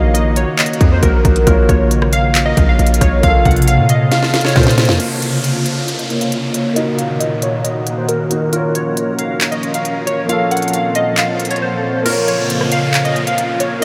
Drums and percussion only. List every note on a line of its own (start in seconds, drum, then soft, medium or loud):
0.15 closed hi-hat medium
0.36 closed hi-hat medium
0.59 clap loud
0.59 closed hi-hat medium
0.66 closed hi-hat medium
0.73 closed hi-hat soft
0.81 kick loud
0.81 closed hi-hat medium
1.03 kick medium
1.03 closed hi-hat medium
1.25 kick loud
1.25 closed hi-hat medium
1.36 closed hi-hat medium
1.47 kick loud
1.47 closed hi-hat medium
1.69 kick loud
1.69 closed hi-hat medium
1.91 closed hi-hat medium
2.02 cross-stick loud
2.13 closed hi-hat medium
2.35 clap loud
2.35 closed hi-hat medium
2.57 kick loud
2.57 closed hi-hat medium
2.79 closed hi-hat soft
2.87 closed hi-hat medium
2.94 closed hi-hat medium
3.01 kick loud
3.01 cross-stick medium
3.01 closed hi-hat medium
3.23 kick loud
3.23 closed hi-hat medium
3.45 kick medium
3.45 closed hi-hat soft
3.51 closed hi-hat medium
3.56 closed hi-hat medium
3.62 closed hi-hat medium
3.68 closed hi-hat medium
3.89 closed hi-hat medium
4.12 snare medium
4.12 closed hi-hat medium
4.23 snare medium
4.34 snare medium
4.34 closed hi-hat medium
4.41 snare medium
4.41 closed hi-hat medium
4.48 closed hi-hat medium
4.56 kick medium
4.56 snare medium
4.56 closed hi-hat medium
4.63 snare medium
4.63 closed hi-hat medium
4.70 closed hi-hat medium
4.78 snare loud
4.78 closed hi-hat medium
4.78 open hi-hat medium
4.85 snare loud
4.85 closed hi-hat medium
4.92 closed hi-hat soft
5.00 closed hi-hat medium
5.22 closed hi-hat medium
5.44 closed hi-hat medium
5.66 closed hi-hat medium
5.88 closed hi-hat medium
5.99 closed hi-hat soft
6.10 closed hi-hat soft
6.21 closed hi-hat medium
6.32 closed hi-hat medium
6.54 closed hi-hat medium
6.76 closed hi-hat medium
6.99 closed hi-hat medium
7.21 closed hi-hat medium
7.42 closed hi-hat medium
7.65 closed hi-hat medium
7.87 closed hi-hat medium
8.09 closed hi-hat medium
8.31 closed hi-hat medium
8.53 closed hi-hat medium
8.75 closed hi-hat medium
8.97 closed hi-hat medium
9.19 closed hi-hat medium
9.41 clap loud
9.41 closed hi-hat medium
9.52 closed hi-hat soft
9.63 closed hi-hat soft
9.74 closed hi-hat medium
9.85 closed hi-hat medium
10.07 closed hi-hat medium
10.29 closed hi-hat medium
10.51 closed hi-hat medium
10.57 closed hi-hat medium
10.62 closed hi-hat medium
10.68 closed hi-hat medium
10.73 closed hi-hat medium
10.95 closed hi-hat medium
11.17 clap loud
11.17 closed hi-hat medium
11.40 closed hi-hat medium
11.45 closed hi-hat medium
11.51 closed hi-hat medium
11.56 closed hi-hat soft
12.06 closed hi-hat medium
12.06 crash loud
12.28 closed hi-hat medium
12.50 closed hi-hat medium
12.61 cross-stick medium
12.72 closed hi-hat medium
12.94 clap loud
12.94 closed hi-hat medium
13.05 closed hi-hat soft
13.16 closed hi-hat soft
13.27 closed hi-hat medium
13.38 closed hi-hat medium
13.60 closed hi-hat medium